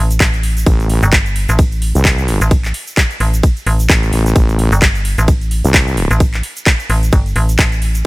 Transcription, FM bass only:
Already playing: A1
0.20 A1
1.03 G1
1.49 A1
2.41 A1
3.20 A1
3.67 A1
4.72 G1
5.18 A1
6.11 A1
6.90 A1
7.13 G1
7.36 A1
7.59 A1

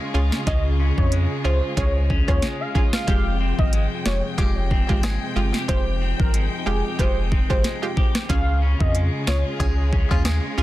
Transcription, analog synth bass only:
0.14 C#2
0.47 C#2
0.98 F2
1.45 C#2
1.77 C#2
2.28 D#2
3.08 F1
3.59 G#1
4.06 F1
4.38 F1
4.89 G#1
5.36 G1
5.69 F1
6.20 G#1
6.67 F1
6.99 F1
7.50 G1
8.30 C#2
8.81 F2
9.27 C#2
9.60 C#2
10.11 D#2
10.58 C#2

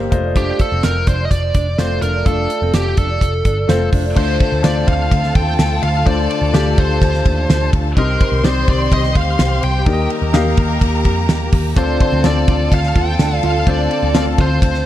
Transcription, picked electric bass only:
0.12 F1
0.72 F1
0.84 F1
1.07 F1
1.31 F1
1.55 F1
1.79 F1
2.02 F1
2.26 F1
2.62 F1
2.73 F1
2.98 F1
3.21 F1
3.45 G1
3.69 F1
3.93 F1
4.17 D2
4.52 D2
4.64 D2
4.88 D2
5.12 D2
5.35 D#2
5.59 D2
5.83 D2
6.07 D2
6.42 D2
6.54 D2
6.78 D2
7.02 D2
7.26 D#2
7.49 D2
7.73 D2
7.97 C2
8.32 C2
8.68 C2
8.92 C2
9.15 D2
9.39 C2
9.63 C2
9.86 D#2
10.22 D#2
10.34 D#2
10.58 D#2
10.81 D#2
11.05 F2
11.29 D#2
11.53 D#2
11.77 D2
12.12 D2
12.24 D2
12.48 D2
12.72 D2
12.96 D#2
13.19 D2
13.43 D2
13.67 D2
14.03 D2
14.15 D2
14.39 D2
14.62 D2

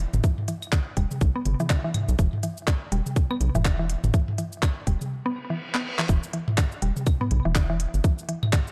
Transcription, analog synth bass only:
0.14 G1
0.97 E1
1.21 B1
1.46 G1
2.09 B1
2.19 E1
2.92 E1
3.41 B1
3.55 E1
4.04 G1
4.87 E1
6.09 E1
6.82 E1
7.31 B1
7.45 E1
7.94 G1

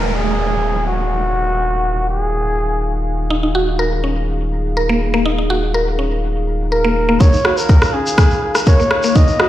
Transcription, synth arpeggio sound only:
3.30 D#4
3.43 D#4
3.55 F#4
3.79 A#4
4.04 C#4
4.77 A#4
4.89 A#3
5.14 A#3
5.26 D#4
5.38 D#4
5.50 F#4
5.74 A#4
5.99 C#4
6.72 A#4
6.85 A#3
7.09 A#3
7.20 D#4
7.33 D#4
7.45 F#4
7.69 A#4
7.94 C#4
8.67 A#4
8.80 A#3
9.04 A#3
9.16 D#4
9.28 D#4
9.40 F#4

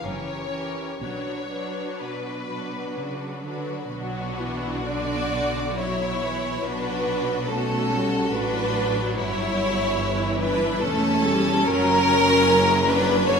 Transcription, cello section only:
0.04 F#2
1.02 B2
2.02 B2
2.97 C#3
3.45 D3
3.92 B2
6.65 B2
8.34 A2
9.17 G2
10.82 E2
11.67 F#2

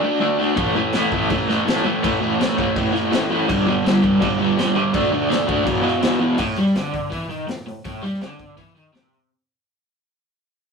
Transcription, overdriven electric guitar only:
0.03 D3 A3 D4
0.21 D3 A3 D4
0.39 D3 A3 D4
0.55 A2 E3 A3
0.75 A2 E3 A3
0.93 A2 E3 A3
1.12 A2 E3 A3
1.30 A2 E3 A3
1.49 A2 E3 A3
1.66 A2 E3 A3
1.85 A2 E3 A3
2.03 A2 E3 A3
2.20 A2 E3 A3
2.39 A2 E3 A3
2.58 A2 E3 A3
2.76 A2 E3 A3
2.92 A2 E3 A3
3.11 A2 E3 A3
3.30 A2 E3 A3
3.48 G2 D3 G3
3.66 G2 D3 G3
3.84 G2 D3 G3
4.02 G2 D3 G3
4.21 G2 D3 G3
4.38 G2 D3 G3
4.57 G2 D3 G3
4.75 G2 D3 G3
4.93 D3 A3 D4
5.11 D3 A3 D4
5.29 D3 A3 D4
5.46 D3 A3 D4
5.64 E2 B2 E3
5.82 E2 B2 E3
6.01 E2 B2 E3
6.20 E2 B2 E3
6.39 A2
6.58 G3
6.75 D3
7.11 E3
7.30 D#3
7.48 A2
7.67 A2
7.85 A2
8.03 G3
8.21 D3
8.58 E3
8.76 D#3
8.93 C3

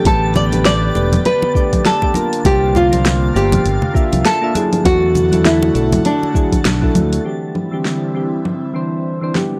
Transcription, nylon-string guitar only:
0.06 A4
0.36 D5
0.65 D5
1.26 B4
1.86 A4
2.46 G4
2.76 F4
3.36 G4
4.26 A4
4.86 F#4
5.45 E4
6.06 D4

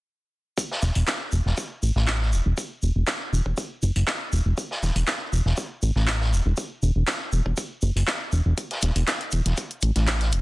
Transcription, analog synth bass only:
0.83 E1
0.96 E1
1.33 E1
1.46 E1
1.83 A1
1.96 A1
2.33 E1
2.46 E1
2.83 E1
2.96 E1
3.33 E1
3.46 E1
3.83 F#1
3.96 F#1
4.33 E1
4.46 E1
4.83 E1
4.96 E1
5.33 E1
5.46 E1
5.83 A1
5.96 A1
6.33 E1
6.46 E1
6.83 E1
6.96 E1
7.33 E1
7.46 E1
7.83 F#1
7.96 F#1
8.33 E1
8.46 E1
8.83 E1
8.96 E1
9.33 E1
9.46 E1
9.83 A1
9.96 A1
10.33 E1

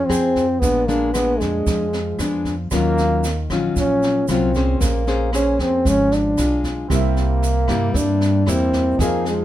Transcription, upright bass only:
0.09 F2
0.62 A#1
1.40 F2
1.66 F2
2.18 F2
2.71 D#2
3.50 A#1
3.76 A#1
4.28 C2
4.80 A#1
5.59 F2
5.85 G#1
6.38 B1
6.90 C2
7.68 G2
7.94 G2
8.46 E2
8.99 F2

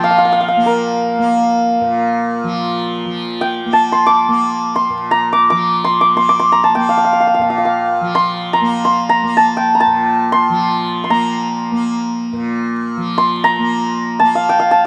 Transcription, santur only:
Already playing: G5 A5 C6
0.04 F5
0.10 F5
0.18 F5
0.25 F5
0.32 F5
0.41 F5
0.48 F5
0.66 A#4
3.41 G5
3.73 A5
3.92 C6
4.06 D6
4.76 C6
5.11 A#5
5.33 D6
5.50 D6
5.84 C6
6.01 D6
6.17 C6
6.29 D6
6.39 C6
6.52 A#5
6.64 A5
6.75 G5
6.89 F5
6.97 F5
7.05 F5
7.13 F5
7.20 F5
7.27 F5
7.34 F5
7.41 F5
7.50 F5
7.58 F5
7.65 F5
8.15 C6
8.53 A#5
8.85 C6
9.09 A#5
9.37 A5
9.57 G5
9.75 A#5
9.80 A5
10.32 C6
11.04 C6
11.10 A#5
13.18 C6
13.44 A#5
14.19 A5
14.35 F5
14.49 G5
14.60 F5
14.71 A5

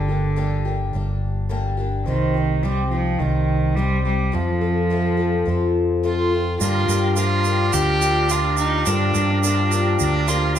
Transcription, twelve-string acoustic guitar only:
0.08 G3 A#3 D4 G4
0.36 G2 D3 G3 A#3 D4 G4
0.65 G3 A#3 D4 G4
0.93 G3 A#3 D4 G4
1.49 G2 D3 G3 A#3 D4 G4
1.77 G3 A#3 D4 G4
2.06 C3 G3 C4 D#4 G4
2.34 C4 D#4 G4
2.63 C3 G3 C4 D#4 G4
2.91 C4 D#4 G4
3.19 G3 C4 D#4 G4
3.77 C3 G3 C4 D#4 G4
4.05 C4 D#4 G4
4.32 F3 C4 F4 A4
4.61 C4 F4 A4
4.90 F3 C4 F4 A4
5.17 C4 F4 A4
5.45 F3 C4 F4 A4
6.03 F3 C4 F4 A4
6.32 C4 F4 A4
6.60 G2 D3 F3 A#3 D4 G4
6.88 F3 A#3 D4 G4
7.16 F3 A#3 D4 G4
7.45 F3 A#3 D4 G4
8.01 F3 A#3 D4 G4
8.29 F3 A#3 D4 G4
8.86 G2 D3 F3 A#3 D4 G4
9.14 F3 A#3 D4 G4
9.43 F3 A#3 D4 G4
9.71 F3 A#3 D4 G4
10.27 F3 A#3 D4 G4
10.55 F3

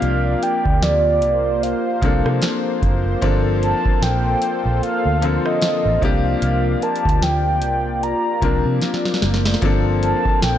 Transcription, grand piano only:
Already playing: F3 A#3 C4 D4 G4
2.01 F3 A#3 C4 D4 A4
3.21 F3 A#3 C4 D4 A4
5.21 D3 F3 A#3 C4 A4
6.01 F3 A#3 C4 D4 G4
8.41 F3 A#3 C4 D4 A#4
9.62 F3 A#3 C4 D4 A4

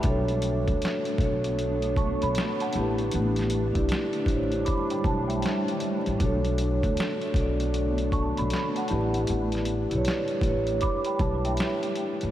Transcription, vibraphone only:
Already playing: B4 E5
0.02 D4 F#4
0.06 A4 C#5
1.16 D4 F#4 A4
1.22 C#5
2.72 D4 E4
2.76 G4 B4
3.72 D4 E4
3.76 G4 D5
4.22 D4 E4 G4
4.28 C5
4.35 C#5
6.18 D4 F#4
6.23 A4 C#5
7.34 D4 F#4 A4
7.40 D5
8.88 E4 G4 B4
8.94 D5
9.90 E4 G4
9.94 B4 C#5
10.42 E4 G4 B4
10.47 C#5

